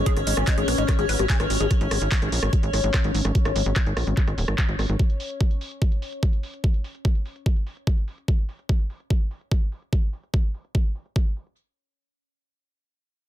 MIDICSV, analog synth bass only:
0, 0, Header, 1, 2, 480
1, 0, Start_track
1, 0, Tempo, 410959
1, 74, Time_signature, 4, 2, 24, 8
1, 15511, End_track
2, 0, Start_track
2, 0, Title_t, "Analog synth bass"
2, 0, Program_c, 0, 38
2, 194, Note_on_c, 0, 32, 91
2, 279, Note_off_c, 0, 32, 0
2, 314, Note_on_c, 0, 32, 97
2, 399, Note_off_c, 0, 32, 0
2, 434, Note_on_c, 0, 32, 94
2, 519, Note_off_c, 0, 32, 0
2, 674, Note_on_c, 0, 32, 88
2, 759, Note_off_c, 0, 32, 0
2, 793, Note_on_c, 0, 34, 95
2, 879, Note_off_c, 0, 34, 0
2, 913, Note_on_c, 0, 32, 90
2, 999, Note_off_c, 0, 32, 0
2, 1154, Note_on_c, 0, 32, 89
2, 1239, Note_off_c, 0, 32, 0
2, 1273, Note_on_c, 0, 32, 100
2, 1359, Note_off_c, 0, 32, 0
2, 1394, Note_on_c, 0, 32, 94
2, 1479, Note_off_c, 0, 32, 0
2, 1634, Note_on_c, 0, 32, 93
2, 1719, Note_off_c, 0, 32, 0
2, 1754, Note_on_c, 0, 32, 99
2, 1839, Note_off_c, 0, 32, 0
2, 1874, Note_on_c, 0, 32, 97
2, 1959, Note_off_c, 0, 32, 0
2, 2114, Note_on_c, 0, 32, 88
2, 2199, Note_off_c, 0, 32, 0
2, 2234, Note_on_c, 0, 32, 98
2, 2319, Note_off_c, 0, 32, 0
2, 2354, Note_on_c, 0, 32, 90
2, 2439, Note_off_c, 0, 32, 0
2, 2594, Note_on_c, 0, 32, 89
2, 2679, Note_off_c, 0, 32, 0
2, 2714, Note_on_c, 0, 34, 99
2, 2799, Note_off_c, 0, 34, 0
2, 2834, Note_on_c, 0, 32, 92
2, 2919, Note_off_c, 0, 32, 0
2, 3074, Note_on_c, 0, 32, 84
2, 3159, Note_off_c, 0, 32, 0
2, 3194, Note_on_c, 0, 32, 95
2, 3279, Note_off_c, 0, 32, 0
2, 3314, Note_on_c, 0, 32, 95
2, 3399, Note_off_c, 0, 32, 0
2, 3554, Note_on_c, 0, 32, 89
2, 3639, Note_off_c, 0, 32, 0
2, 3674, Note_on_c, 0, 32, 106
2, 3759, Note_off_c, 0, 32, 0
2, 3794, Note_on_c, 0, 32, 101
2, 3879, Note_off_c, 0, 32, 0
2, 4034, Note_on_c, 0, 32, 92
2, 4119, Note_off_c, 0, 32, 0
2, 4154, Note_on_c, 0, 32, 97
2, 4239, Note_off_c, 0, 32, 0
2, 4274, Note_on_c, 0, 32, 91
2, 4359, Note_off_c, 0, 32, 0
2, 4514, Note_on_c, 0, 32, 88
2, 4599, Note_off_c, 0, 32, 0
2, 4634, Note_on_c, 0, 34, 100
2, 4719, Note_off_c, 0, 34, 0
2, 4754, Note_on_c, 0, 32, 91
2, 4839, Note_off_c, 0, 32, 0
2, 4994, Note_on_c, 0, 32, 88
2, 5079, Note_off_c, 0, 32, 0
2, 5114, Note_on_c, 0, 27, 101
2, 5199, Note_off_c, 0, 27, 0
2, 5234, Note_on_c, 0, 32, 93
2, 5319, Note_off_c, 0, 32, 0
2, 5474, Note_on_c, 0, 32, 90
2, 5559, Note_off_c, 0, 32, 0
2, 5594, Note_on_c, 0, 32, 101
2, 5679, Note_off_c, 0, 32, 0
2, 5714, Note_on_c, 0, 32, 94
2, 5799, Note_off_c, 0, 32, 0
2, 15511, End_track
0, 0, End_of_file